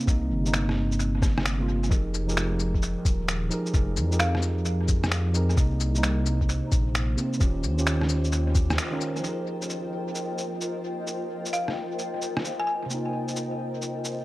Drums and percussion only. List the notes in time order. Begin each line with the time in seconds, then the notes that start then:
0.07 kick, shaker
0.46 shaker
0.54 finger snap, shaker
0.69 cross-stick
0.92 shaker
1.00 shaker
1.22 kick, cross-stick, shaker
1.38 cross-stick
1.46 finger snap, shaker
1.84 shaker
1.91 kick, shaker
2.14 cabasa
2.29 shaker
2.37 finger snap, shaker
2.60 cabasa
2.74 kick
2.82 shaker
3.05 kick, cabasa, shaker
3.28 finger snap, shaker
3.51 cabasa
3.66 shaker
3.74 kick, shaker
3.97 cabasa
4.12 shaker
4.20 finger snap, shaker
4.35 cross-stick
4.42 cabasa
4.65 shaker
4.88 kick, cabasa, shaker
5.04 cross-stick, cabasa
5.12 finger snap, shaker
5.35 cabasa
5.50 shaker
5.57 kick, shaker
5.80 cabasa
5.95 shaker
6.03 finger snap, shaker
6.26 cabasa
6.41 kick
6.49 shaker
6.72 kick, cabasa, shaker
6.95 finger snap, shaker
7.18 cabasa
7.33 shaker
7.41 kick, shaker
7.64 cabasa
7.78 shaker
7.87 finger snap, shaker
8.01 cross-stick
8.09 cabasa
8.24 shaker
8.32 shaker
8.55 kick, cabasa, shaker
8.70 cross-stick, cabasa
8.78 finger snap, shaker
9.01 cabasa
9.16 shaker
9.24 shaker
9.62 shaker
9.70 shaker
10.15 shaker
10.38 shaker
10.61 shaker
11.07 shaker
11.45 shaker
11.53 shaker
11.68 cross-stick
11.99 shaker
12.22 shaker
12.37 cross-stick
12.45 shaker
12.90 shaker
13.28 shaker
13.36 shaker
13.82 shaker
14.05 shaker